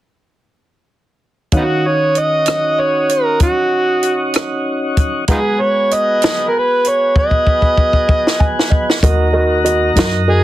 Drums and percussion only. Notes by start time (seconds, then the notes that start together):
1.52 kick, closed hi-hat
2.15 closed hi-hat
2.46 cross-stick, closed hi-hat
3.09 closed hi-hat
3.40 kick, closed hi-hat
4.03 closed hi-hat
4.34 cross-stick, closed hi-hat
4.97 kick, closed hi-hat
5.28 kick, closed hi-hat
5.91 closed hi-hat
6.22 snare, closed hi-hat
6.85 closed hi-hat
7.16 kick
7.31 kick
7.47 kick
7.62 kick
7.78 kick
7.93 kick
8.09 kick
8.27 snare
8.40 kick
8.59 snare
8.72 kick
8.90 snare
9.03 kick, closed hi-hat
9.66 closed hi-hat
9.96 snare, closed hi-hat